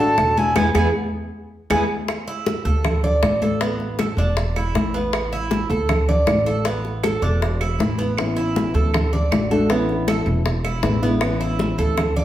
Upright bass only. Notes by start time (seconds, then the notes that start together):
Already playing: A1
0.17 E1
0.56 E2
0.74 E2
1.70 E2
2.65 D2
3.23 A1
4.17 E1
4.74 A1
5.70 D2
6.26 A1
7.22 E1
7.79 A1
8.74 D2
9.31 A1
10.26 E1
10.83 A1
11.78 D2